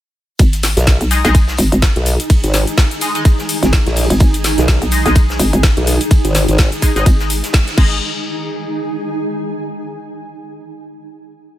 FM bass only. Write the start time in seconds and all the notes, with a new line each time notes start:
0.39 G#1
1.01 B1
1.25 B1
1.58 G#1
1.72 G#1
3.63 G#1
4.10 G#1
4.20 G#1
4.82 B1
5.06 B1
5.39 G#1
5.53 G#1
7.06 G#1
7.78 G#1